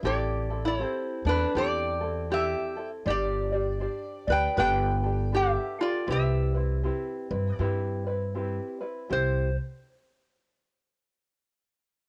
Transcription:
0.03 A1 C4 E4 G4 A4 D5
0.50 C4 E4 A4
0.65 E4 C#5
0.79 C4 E4 G4 A4
0.85 C5
1.25 E2 C4 D4 E4 A4 B4
1.55 E2 C4 E4 G4 A4 D5
2.01 C4 E4 A4
2.30 C4 E4 G4 A4 E5
2.76 C4 E4 A4
3.05 G1 D4 G4 C5 D5
3.10 D5
3.52 D4 G4 D5
3.80 D4 G4 C5 D5
4.27 D2 D4 G4 B4 D5
4.32 G5
4.56 G1 D4 G4 A4 B4 G5
5.03 D4 G4 A4
5.32 D4 G4 A4 B4
5.36 E5
5.79 D4 F4 G4 A4 D5
6.07 C2 C4 E4 G4 B4
6.12 E5
6.55 C4 E4 B4
6.83 C4 E4 G4 B4
7.31 G2 C4 E4 B4
7.55 G2 D5
7.59 C4 E4 G4 B4
8.07 C4 E4 B4
8.35 C4 E4 G4 B4
8.81 C4 E4 B4
9.10 C2 C4 E4 G4 C5

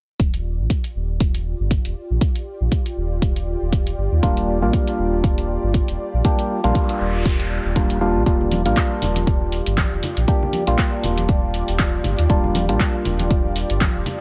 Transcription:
0.19 D#1 F4 G4 D5, kick, closed hi-hat
0.34 closed hi-hat
0.59 A#1
0.70 kick, closed hi-hat
0.84 closed hi-hat
0.95 D#1
1.20 kick, closed hi-hat
1.35 closed hi-hat
1.60 G1
1.71 kick, closed hi-hat
1.85 D#1, closed hi-hat
2.10 A#1
2.21 kick, closed hi-hat
2.35 closed hi-hat
2.61 A#1
2.72 kick, closed hi-hat
2.86 closed hi-hat
2.97 D#1
3.22 kick, closed hi-hat
3.36 closed hi-hat
3.61 D#1
3.73 kick, closed hi-hat
3.87 closed hi-hat
3.98 G1
4.12 D#2
4.23 D#1 G3 A#3 D4 F4, kick, closed hi-hat
4.37 closed hi-hat
4.62 A#1 G3 A#3 D4 F4
4.73 kick, closed hi-hat
4.88 closed hi-hat
4.98 D#1
5.24 kick, closed hi-hat
5.38 closed hi-hat
5.63 G1
5.74 kick, closed hi-hat
5.88 D#1, closed hi-hat
6.14 A#1
6.25 G3 A#3 D4 G4, kick, closed hi-hat, noise sweep
6.39 closed hi-hat
6.64 A#1 G3 A#3 D4 F4, closed hi-hat
6.75 kick, closed hi-hat
6.89 closed hi-hat
7.00 D#1
7.26 kick, closed hi-hat
7.40 closed hi-hat
7.65 D#1
7.76 G3 A#3 D4 F4, kick, closed hi-hat
7.90 closed hi-hat
8.01 G3 A#3 D4 F4
8.15 A#1
8.26 D#1 G3 A#3 D4 F4 G4 D5, kick, closed hi-hat
8.41 low conga
8.52 open hi-hat, high conga
8.66 A#1 G3 A#3 D4 F4, closed hi-hat
8.77 kick, clap, closed hi-hat
9.02 D#1, open hi-hat, low conga
9.16 closed hi-hat, high conga
9.27 kick, closed hi-hat
9.52 open hi-hat
9.66 G1, closed hi-hat
9.77 kick, clap, closed hi-hat, high conga
9.92 D#1
10.03 open hi-hat, low conga
10.17 A#1, closed hi-hat
10.28 G3 A#3 D4 G4, kick, closed hi-hat
10.42 low conga
10.53 open hi-hat, high conga
10.67 A#1 G3 A#3 D4 F4, closed hi-hat
10.78 kick, clap, closed hi-hat
11.04 D#1, open hi-hat, low conga
11.18 closed hi-hat, high conga
11.29 kick, closed hi-hat
11.54 open hi-hat
11.68 D#1, open hi-hat
11.79 kick, clap, closed hi-hat, high conga
12.04 G1, open hi-hat, low conga
12.19 D#2, closed hi-hat
12.30 D#1 G3 A#3 D4 F4, kick, closed hi-hat
12.44 low conga
12.55 open hi-hat, high conga
12.69 A#1 G3 A#3 D4 F4, closed hi-hat
12.80 kick, clap, closed hi-hat
13.05 D#1, open hi-hat, low conga
13.19 closed hi-hat, high conga
13.31 kick, closed hi-hat
13.56 open hi-hat
13.70 G1, closed hi-hat
13.81 kick, clap, closed hi-hat, high conga
13.95 D#1
14.06 open hi-hat, low conga

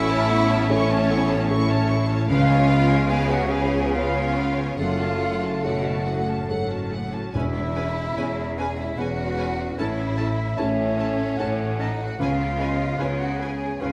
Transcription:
Already playing: A1 A2 A3 C#4 E4 E5
0.10 C#4 C#5 A5
0.30 B3 E4 A4 C#6
0.51 C#4 C#5 A5
0.69 A3 C#4 E4 A4 C#5 C#6
0.91 C#4 C#5 A5
1.10 B3 E4 A4 C#6
1.29 C#4 C#5 A5
1.49 A3 C#4 E4 A4 C#5 C#6
1.70 C#4 C#5 A5
1.89 E4 A4 C#6
2.09 C#4 C#5 A5
2.28 C#2 C#3 G#3 B3 C#4 F4 B4 F5
2.48 C#4 C#5 G#5
2.68 B3 B4 F5
2.89 C#4 C#5 G#5
3.09 B3 G#4 B4 C#5 F5 G#5
3.29 C#4 F#4 C#5 F#5 G#5
3.51 B3 G#4 B4 F5 G#5
3.73 C#4 C#5 G#5
3.92 B3 C#4 F4 G#4 B4 C#5 F5
3.96 F5
4.15 C#4 C#5 G#5
4.37 B3 B4 F5
4.57 C#4 C#5 G#5
4.77 F#1 F#2 A3 F4 A4 F5 F#5
5.00 C#4 F#4 A5
5.21 A3 A4 F#5
5.41 C#4 F#4 A5
5.63 B2 A3 F#4 A4 C#5 F#5
5.84 C#4 F#4 A5
6.06 A2 A3 A4 F#5
6.27 C#4 F#4 A5
6.50 G#2 F#3 A3 A4 C#5 F#5
6.70 C#4 F#4 A5
6.92 A2 A3 A4 F#5
7.13 C#4 F#4 A5
7.33 E1 E2 G#3 C#4 E4 B4 E5 G#5
7.76 C#4 B4 G#5
8.17 E1 E2 B3 C#4 G#4 B4 C#5 G#5
8.58 C#4 G#4 B4 G#5
8.78 E4 E5
8.98 E1 E2 B3 C#4 F#4 G#4 B4 C#5 F#5 G#5
9.38 C#4 B4 G#5
9.78 A1 A2 A3 C#4 E4 A4 C#5 E5 A5
10.18 C#4 A4 E5 A5
10.57 A1 A2 C#4 A4 C#5 A5
10.97 C#4 A4 A5
11.38 A1 A2 C#4 A4 C#5 F#5 A5
11.80 C#4 D#4 A4 D#5 A5
12.00 F#4 F#5
12.19 C#2 C#3 B3 C#4 F4 B4 F5 G#5
12.59 C#4 B4 D#5 G#5
12.99 C#2 C#3 C#4 B4 C#5 G#5
13.20 F#4 F#5
13.40 C#4 G#4 B4 G#5
13.80 C#2 C#3 B3 C#4 F4 G#4 B4 C#5 F5 G#5

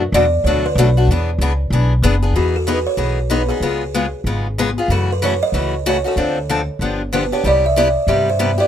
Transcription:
Already playing: F#2
0.12 E2 B2 F#3 A3 D4 F#4 D5
0.44 D2 B2 F#3 A3 D4 F#4 C#5
0.66 B4
0.75 B1 B2 F#3 A3 D4 F#4
0.97 A3 D4 F#4
1.07 E2 E3 B3
1.12 D4 G#4
1.39 C#2 E3 B3 D4 G#4
1.70 B1 E3 B3 D4 G#4
2.02 F#1 E3 B3 D4 G#4
2.22 B3 D4 G#4
2.34 E2 E3 B3 D#4 F#4 G#4
2.56 A4
2.67 E3 B3 D#4 G#4 B4
2.87 C#5
2.97 B1 E3 B3 D#4 G#4
3.30 E3 B3 D#4 G#4 B4
3.49 B3 D#4 G#4
3.60 C#2 C#3 G#3 B3 F4 G#4
3.94 C#3 G#3 B3 F4 G#4
4.24 G#1 C#3 G#3 B3 F4 G#4
4.58 C#3 G#3 B3 F4 G#4
4.78 B3 F4 G#4
4.88 F#2 C#3 E3 A3 C#4 F#4 A4
5.12 B4
5.22 C#3 E3 A3 C#4 F#4 C#5
5.43 D#5
5.52 C#2 C#3 E3 A3 C#4 F#4
5.86 C#3 E3 A3 C#4 F#4 C#5
6.04 A3 C#4 F#4 A4
6.16 D2 D3 F3 C4 D4 A4
6.49 D3 F3 C4 D4 A4
6.79 G1 D3 F3 B3 D4 G4
7.13 D3 F3 B3 D4 G4 B4
7.32 B3 D4 G4 C#5
7.44 C2 C3 G3 B3 E4 G4 D5
7.66 E5
7.76 C3 G3 B3 E4 G4 D5
8.07 G2 C3 G3 B3 E4 G4 E5
8.30 C5
8.39 C3 G3 B3 E4 G4
8.58 B3 E4 G4 D5

